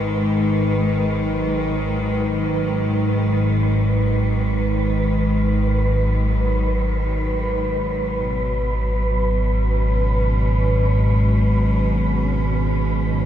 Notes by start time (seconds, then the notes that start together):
Already playing: G#1 G#2 D#3 G#3 B4
1.16 F#3
8.24 B2
9.61 C#4